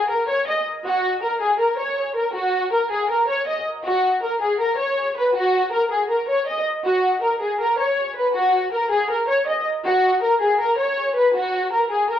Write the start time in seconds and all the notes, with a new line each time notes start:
0.10 A#4
0.29 C#5
0.47 D#5
0.85 F#4
1.22 A#4
1.41 G#4
1.60 A#4
1.79 C#5
2.16 A#4
2.35 F#4
2.72 A#4
2.91 G#4
3.10 A#4
3.29 C#5
3.47 D#5
3.85 F#4
4.23 A#4
4.41 G#4
4.60 A#4
4.79 C#5
5.16 B4
5.35 F#4
5.72 A#4
5.91 G#4
6.10 A#4
6.29 C#5
6.47 D#5
6.85 F#4
7.22 A#4
7.41 G#4
7.60 A#4
7.79 C#5
8.16 B4
8.35 F#4
8.72 A#4
8.91 G#4
9.10 A#4
9.29 C#5
9.47 D#5
9.85 F#4
10.22 A#4
10.41 G#4
10.60 A#4
10.79 C#5
11.16 B4
11.35 F#4
11.72 A#4
11.91 G#4
12.10 A#4